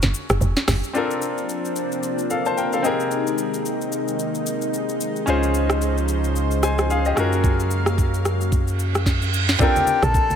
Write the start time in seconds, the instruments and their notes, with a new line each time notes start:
Already playing: grand piano C#4 F4 F#4 G#4 A#4
0.02 log drum bass F#1, snare, high conga, shaker
0.14 shaker
0.30 log drum bass F#1, cross-stick, shaker
0.41 log drum bass F1, low conga, shaker
0.56 snare, shaker
0.68 log drum bass F#1, cross-stick, snare, open hi-hat, high conga, low conga, shaker
0.84 shaker
0.93 analog synth pad C3 F3 A#3 C4 D4, grand piano C4 D4 F4 A4 A#4, shaker
1.11 shaker
1.22 shaker
1.38 shaker
1.49 shaker
1.65 shaker
1.76 shaker
1.92 shaker
2.03 shaker
2.18 shaker
2.30 grand piano A4 F5, shaker
2.45 grand piano C5 A5, shaker
2.57 grand piano A#4 G5, shaker
2.73 grand piano A4 F5, shaker
2.83 analog synth pad D#3 G#3 D#4, grand piano C4 D#4 G4 G#4 A#4, shaker
3.00 shaker
3.11 shaker
3.27 shaker
3.38 shaker
3.54 shaker
3.65 shaker
3.81 shaker
3.92 shaker
4.08 shaker
4.19 shaker
4.35 shaker
4.46 shaker
4.61 shaker
4.74 shaker
4.89 shaker
5.01 shaker
5.16 shaker
5.26 sub bass C#2, analog synth pad C#3 F3 C5, grand piano C#4 D#4 F4 G#4 C5, shaker
5.43 shaker
5.54 shaker
5.70 cross-stick, shaker
5.82 shaker
5.97 shaker
6.08 shaker
6.24 shaker
6.36 shaker
6.51 shaker
6.63 grand piano C5 G#5, cross-stick, shaker
6.78 cross-stick, shaker
6.90 grand piano G#4 F5, shaker
7.05 grand piano G4 D#5, shaker
7.16 sub bass F#2, analog synth pad F#3 A#3 F5, grand piano C#4 F4 F#4 G#4 A#4, cross-stick, shaker
7.33 shaker
7.44 kick, shaker
7.60 shaker
7.71 shaker
7.86 cross-stick, shaker
7.98 kick, shaker
8.14 shaker
8.25 cross-stick, shaker
8.41 shaker
8.52 kick, reverse cymbal, shaker
8.68 shaker
8.79 shaker
8.95 cross-stick, shaker
9.06 kick, snare, shaker
9.22 shaker
9.34 shaker
9.49 snare, shaker
9.59 grand piano C4 D4 F4 A4 A#4, soft synth lead G5, kick, low conga, shaker
9.76 high conga, shaker
9.87 high conga, shaker
10.02 log drum bass A#1, soft synth lead A5, cross-stick, high conga, shaker
10.14 kick, shaker
10.30 high conga, shaker